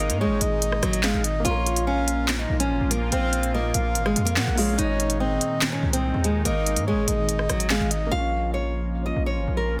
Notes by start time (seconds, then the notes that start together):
Already playing: G#1 A#2 D#3 G#3 A#3 D#4 D#5
0.10 G#2, closed hi-hat
0.20 G#3 C#5
0.26 G#1
0.41 G#1 D#5, closed hi-hat
0.62 closed hi-hat
0.72 cross-stick
0.82 G#1 F#3, cross-stick, closed hi-hat
0.93 closed hi-hat
1.03 G#3 F5, snare, clap
1.14 G#1
1.24 D#5, closed hi-hat
1.40 A#3
1.45 A#1 A#2 F3 A#3 F4 C#5, closed hi-hat
1.50 A#4
1.66 closed hi-hat
1.76 closed hi-hat
1.87 C#4 F5
2.08 closed hi-hat
2.28 snare, clap, closed hi-hat
2.39 D#4
2.50 A#1
2.60 C#4, closed hi-hat
2.70 G#1
2.81 A#1
2.91 A#3, closed hi-hat
3.12 A#1 C4 F5, closed hi-hat
3.33 closed hi-hat
3.43 closed hi-hat
3.54 A#3 D#5
3.74 A#1 F5, closed hi-hat
3.95 G#1, closed hi-hat
4.06 G#3, cross-stick
4.16 F2, closed hi-hat
4.25 A#3, closed hi-hat
4.36 A#2 F#5, snare, clap
4.47 A#1
4.55 G#3 A#3 F4 F5, open hi-hat
4.60 C#5
4.73 G#3
4.78 G#1 D#3 G#3 D#4 C#5, closed hi-hat
4.84 D#5
5.00 closed hi-hat
5.10 closed hi-hat
5.20 C4 D#5
5.41 closed hi-hat
5.61 snare, clap, closed hi-hat
5.72 C#4
5.83 C2
5.93 C4, closed hi-hat
6.14 D#2
6.24 G#3, closed hi-hat
6.45 G#1 A#3 D#5, closed hi-hat
6.66 closed hi-hat
6.76 G#2, closed hi-hat
6.87 G#3 C#5
6.92 G#1
7.08 G#1 D#5, closed hi-hat
7.29 closed hi-hat
7.39 cross-stick
7.49 G#1 F#3, cross-stick, closed hi-hat
7.60 closed hi-hat
7.70 G#3 F5, snare, clap
7.81 G#1
7.91 D#5, closed hi-hat
8.07 A#3
8.12 A#1 F3 A#3 C#4 F4 F5
8.17 C#4
8.54 C#5
9.06 D#5
9.16 A#1
9.26 C#5
9.37 G#1
9.48 A#1
9.57 A#4